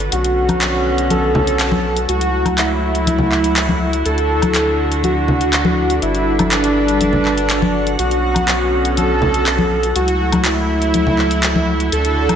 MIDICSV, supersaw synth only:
0, 0, Header, 1, 2, 480
1, 0, Start_track
1, 0, Key_signature, 2, "minor"
1, 0, Tempo, 491803
1, 118, Time_signature, 4, 2, 24, 8
1, 12059, End_track
2, 0, Start_track
2, 0, Title_t, "Supersaw synth"
2, 0, Program_c, 0, 81
2, 117, Note_on_c, 0, 66, 105
2, 982, Note_off_c, 0, 66, 0
2, 1078, Note_on_c, 0, 69, 101
2, 1942, Note_off_c, 0, 69, 0
2, 2037, Note_on_c, 0, 66, 91
2, 2470, Note_off_c, 0, 66, 0
2, 2518, Note_on_c, 0, 64, 104
2, 3862, Note_off_c, 0, 64, 0
2, 3958, Note_on_c, 0, 69, 102
2, 4822, Note_off_c, 0, 69, 0
2, 4918, Note_on_c, 0, 66, 100
2, 5782, Note_off_c, 0, 66, 0
2, 5877, Note_on_c, 0, 64, 92
2, 6310, Note_off_c, 0, 64, 0
2, 6358, Note_on_c, 0, 62, 106
2, 7702, Note_off_c, 0, 62, 0
2, 7797, Note_on_c, 0, 66, 105
2, 8662, Note_off_c, 0, 66, 0
2, 8757, Note_on_c, 0, 69, 100
2, 9621, Note_off_c, 0, 69, 0
2, 9717, Note_on_c, 0, 66, 93
2, 10150, Note_off_c, 0, 66, 0
2, 10197, Note_on_c, 0, 64, 104
2, 11542, Note_off_c, 0, 64, 0
2, 11638, Note_on_c, 0, 69, 108
2, 12059, Note_off_c, 0, 69, 0
2, 12059, End_track
0, 0, End_of_file